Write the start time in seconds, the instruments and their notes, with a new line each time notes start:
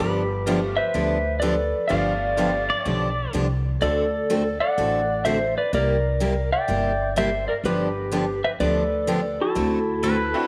0.00 upright bass G1, steel-string acoustic guitar D3 F3 B3 D4 G4, clarinet G4, electric slide guitar G4 B4
0.46 steel-string acoustic guitar D3 F3 B3 D4 G4, honky-tonk piano G3 A3 B3 F4
0.77 clarinet B4, electric slide guitar C5 E5
0.94 upright bass D2, steel-string acoustic guitar D3 F3 B3 D4 G4
1.40 steel-string acoustic guitar D3 F3 B3 D4 G4, clarinet A4, electric slide guitar B4 D5
1.88 upright bass G1, steel-string acoustic guitar D3 F3 B3 D4 G4, honky-tonk piano G3 A3 B3 F4, clarinet D5, electric slide guitar D5 F5
2.37 steel-string acoustic guitar D3 F3 B3 D4 G4, honky-tonk piano G3 A3 B3 F4
2.70 pedal steel guitar D5
2.79 clarinet C#5, electric slide guitar E5
2.85 upright bass B1, steel-string acoustic guitar D3 F3 B3 D4 G4, pedal steel guitar D5
3.33 upright bass C2, steel-string acoustic guitar D3 F3 B3 D4 G4
3.81 upright bass D2, steel-string acoustic guitar D3 A3 C4 F#4 A4, clarinet A4, electric slide guitar A4 D5
4.30 steel-string acoustic guitar D3 A3 C4 F#4 A4
4.60 clarinet D5, electric slide guitar D5 F#5
4.78 upright bass A1, steel-string acoustic guitar D3 A3 C4 F#4 A4
5.25 steel-string acoustic guitar D3 A3 C4 F#4 A4, clarinet C5, electric slide guitar C5 E5
5.57 clarinet B4, electric slide guitar B4 D5
5.73 upright bass C2, steel-string acoustic guitar C3 G3 A#3 E4 G4, clarinet A#4, electric slide guitar A#4 D5
6.20 steel-string acoustic guitar C3 G3 A#3 E4 G4
6.52 clarinet D5, electric slide guitar E5 G5
6.68 upright bass G1, steel-string acoustic guitar C3 G3 A#3 E4 G4
7.16 steel-string acoustic guitar C3 G3 A#3 E4 G4, electric slide guitar C5 E5, clarinet C5
7.48 electric slide guitar A#4 D5, clarinet A#4
7.64 upright bass G1, steel-string acoustic guitar D3 F3 B3 D4 G4, clarinet G4, electric slide guitar G4 B4
8.12 steel-string acoustic guitar D3 F3 B3 D4 G4
8.44 clarinet B4, electric slide guitar C5 E5
8.60 upright bass D2, steel-string acoustic guitar D3 F3 B3 D4 G4, clarinet A4, electric slide guitar B4 D5
9.07 steel-string acoustic guitar D3 F3 B3 D4 G4
9.40 clarinet E4, electric slide guitar F#4 A4
9.55 upright bass D2, steel-string acoustic guitar D3 A3 C4 F#4 A4
10.03 steel-string acoustic guitar D3 A3 C4 F#4 A4, pedal steel guitar B4
10.34 honky-tonk piano C4 D4 E4 F#4